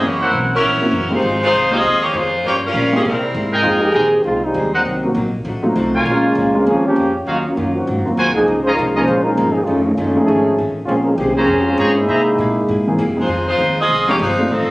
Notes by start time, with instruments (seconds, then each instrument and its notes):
0.02 upright bass F#1, hollow-body jazz guitar F#2 E3 A#3, saxophone section F#4
0.06 saxophone section A#3 E4 C#5, hollow-body jazz guitar C4
0.20 trumpet section E4 A#4 C5 F#5
0.31 upright bass B1, hollow-body jazz guitar F#2 E3 A#3 C4
0.55 saxophone section F#3 C#4 E4 A#4
0.62 upright bass A#1, hollow-body jazz guitar F#2 E3 A#3
0.67 hollow-body jazz guitar C4
0.81 grand piano A#3 C4 C#4 E4 F#4
0.91 upright bass F#1, hollow-body jazz guitar F#2 E3 A#3 C4
1.10 grand piano G#3 C4 D#4 F4 G4, saxophone section D#4 F4
1.14 saxophone section G#3 C5
1.22 upright bass G#1, hollow-body jazz guitar F2 D#3 G#3 C4
1.43 saxophone section G#3 D#4 F4 C5
1.52 upright bass C2, hollow-body jazz guitar F2 D#3 G#3 C4
1.70 grand piano G#3 C4 D#4 F4 G4, saxophone section C4 F4 G#4 D#5, trumpet section D#4 G#4 C5 F5
1.82 upright bass D#2, hollow-body jazz guitar F2 D#3 G#3 C4
2.02 saxophone section A#3 D#4 G4 C#5
2.12 hollow-body jazz guitar F2 D#3 G#3 C4, upright bass F2, saxophone section G#3 D#4 F4 C5
2.42 hollow-body jazz guitar G2 F3 A#3 C#4, upright bass G2
2.46 saxophone section A#3 F4 G4 C#5
2.65 saxophone section G3 C#4 F4 A#4
2.74 hollow-body jazz guitar G2 F3 A#3 C#4, upright bass A#2
2.92 saxophone section F3 A#3 C#4 G#4, grand piano G#3 A#3 C4 E4 G4
3.03 hollow-body jazz guitar C3 G#3 A#3 E4, upright bass C3
3.07 saxophone section G3 C4 E4 A#4
3.34 upright bass G#2, hollow-body jazz guitar C3 G#3 A#3 E4
3.52 trumpet section D#4 G#4 A#4 G5
3.61 upright bass F2, trombone section G#3 C4 D#4 F4
3.65 hollow-body jazz guitar F3 A#3 D#4 G#4
3.79 trombone section G#3 D#4 G4 A#4
3.92 upright bass A#1, trombone section D#3 C4 G4 G#4, hollow-body jazz guitar F3, trumpet section D#4 G#4 A#4 G5
3.97 hollow-body jazz guitar A#3 D#4 G#4
4.24 upright bass C2, hollow-body jazz guitar F3 A#3 D#4, trombone section G#3 C4 D#4 F4
4.28 hollow-body jazz guitar G#4
4.43 trombone section G3 G#3 C4 D#4
4.54 upright bass D#2, hollow-body jazz guitar F3 A#3 D#4 G#4
4.72 trombone section D#3 F#3 A#3 C4, trumpet section D#4 A#4 C5 F#5
4.85 upright bass C2, hollow-body jazz guitar C3 F#3 A#3
4.89 hollow-body jazz guitar D#4
5.03 grand piano F#3 A#3 C4 D#4 F#4
5.15 upright bass A#1, hollow-body jazz guitar C3 F#3 A#3 D#4
5.45 upright bass A1, hollow-body jazz guitar F3 A3 D#4
5.49 hollow-body jazz guitar F#4
5.62 grand piano F#3 A3 C4 D#4 F4
5.76 upright bass C2, hollow-body jazz guitar F3 A3 D#4 F#4
5.94 trumpet section F4 A#4 C#5 G#5
6.06 upright bass A#1, hollow-body jazz guitar A#2 F3 G#3 C#4, trombone section G#3 A#3 C#4 F4
6.35 upright bass C#2, hollow-body jazz guitar A#2 F3 G#3
6.39 hollow-body jazz guitar C#4
6.54 grand piano G#3 A#3 C4 C#4 F4
6.66 upright bass D#2, hollow-body jazz guitar A#2 F3 G#3, trombone section F3 A#3 C#4 G#4
6.70 hollow-body jazz guitar C#4
6.86 trombone section F3 A#3 C#4 G4
6.96 upright bass F2, hollow-body jazz guitar A#2 F3 G#3 C#4
7.26 upright bass D#2, hollow-body jazz guitar D#3 F#3 C#4 F4, trombone section F#3 A#3 C#4 F4, trumpet section D#4 F#4 C#5 F5
7.47 trombone section F#3 A#3 C#4 F4
7.56 upright bass F#2, hollow-body jazz guitar D#3 F#3 C#4 F4, grand piano F#3 A#3 C#4 D#4 F4
7.74 trombone section D#3 A#3 C4 F#4
7.87 upright bass G#2, hollow-body jazz guitar G#2 F#3 A#3 C4
7.98 upright bass F#2
8.05 upright bass D#2, grand piano F#3 A#3 C4 D#4 F4
8.17 upright bass D#2, hollow-body jazz guitar G#2 F#3 A#3 C4, trumpet section F#4 A#4 C5 G#5
8.29 upright bass C2, trombone section A#3
8.34 trombone section F3 D#4 G#4
8.39 upright bass G#1
8.47 upright bass C#2, hollow-body jazz guitar C#3 F3 A#3 D#4
8.63 trombone section G#3 C#4 F4 C5, trumpet section F4 C#5 D#5 A#5
8.73 trombone section G#3 D#4 F4 A#4
8.78 upright bass C2, hollow-body jazz guitar C#3 F3 A#3 D#4
8.95 grand piano F3 A#3 C#4 D#4 G#4, trumpet section F4 C#5 D#5 A#5
9.03 trombone section G#3 C#4 F4 C5
9.07 upright bass A#1, hollow-body jazz guitar C#3 F3 A#3 D#4
9.22 trombone section G#3 D#4 F4 A#4
9.28 grand piano F3 A#3 C#4 D#4 G#4
9.37 upright bass G1, hollow-body jazz guitar C#3 F3 A#3 D#4
9.52 trombone section F3 A#3 D#4 G#4
9.63 upright bass F1, hollow-body jazz guitar F2, trombone section A3 C#4 D#4 F4
9.68 hollow-body jazz guitar D#3 A3 C#4
9.84 trombone section D#3 G#3 A3 C#4
9.94 upright bass F#1, hollow-body jazz guitar F2, trombone section A3 C#4 D#4 F4
9.98 hollow-body jazz guitar D#3 A3 C#4
10.16 grand piano F3 A3 C#4 D#4 G#4
10.23 trombone section D#3 A3 C#4 G#4
10.28 upright bass G#1, hollow-body jazz guitar F2 D#3 A3 C#4
10.58 upright bass A1, hollow-body jazz guitar F2 D#3 A3 C#4
10.86 upright bass A#1, grand piano F3 C4 C#4, trombone section G#3 C4 C#4 F4, hollow-body jazz guitar A#3 C#4
10.90 grand piano A#3 G#4, hollow-body jazz guitar G#4 C5
11.03 trombone section G#3 C#4 F4 A#4
11.16 upright bass C2, trombone section D#3 G#3 C4 G4
11.20 hollow-body jazz guitar A#3 C#4 G#4 C5
11.34 trombone section F3 C4 C#4 G#4, grand piano F3, trumpet section C#4 G#4 C5 A#5
11.38 grand piano A#3 C4 C#4 G#4
11.47 upright bass F2, hollow-body jazz guitar A#3 C#4
11.52 hollow-body jazz guitar G#4 C5
11.64 trombone section G#3 C4 C#4 F4
11.77 upright bass G#2, hollow-body jazz guitar A#3 C#4 G#4, trumpet section G#4 C5 C#5 A#5
11.82 hollow-body jazz guitar C5
11.96 trombone section G#3 A#3 D#4 E4
12.08 upright bass C3, hollow-body jazz guitar C3 A#3 E4, trumpet section G#4 C5 E5 A#5
12.13 hollow-body jazz guitar G#4
12.38 upright bass A#2, hollow-body jazz guitar C3 A#3 E4 G#4
12.68 upright bass G#2, hollow-body jazz guitar C3 A#3 E4 G#4
12.87 grand piano E3 A#3 C4 D#4 G#4
12.98 upright bass F#2, hollow-body jazz guitar C3 A#3 E4 G#4
13.17 grand piano F3 G#3 C4 D#4 G#4, saxophone section G#3 F4
13.21 saxophone section D#4 C5
13.28 hollow-body jazz guitar F2 D#3 G#3 C4, upright bass F2
13.48 saxophone section G#3 D#4 F4 C5
13.57 upright bass D#2, hollow-body jazz guitar F2 D#3 G#3 C4
13.79 saxophone section C4 F4 G#4 D#5
13.88 upright bass C2, hollow-body jazz guitar F2 D#3 G#3 C4
14.07 grand piano F3 G#3 C4 D#4 G4, saxophone section A#3 D#4 G4 C#5
14.18 upright bass G1, hollow-body jazz guitar F2 D#3 G#3 C4, saxophone section G#3 D#4 F4 C5
14.38 grand piano G3 A3 C4 D#4 F4
14.48 upright bass A1, hollow-body jazz guitar F2 D#3 A3 C4, saxophone section F3 C4 D#4 A4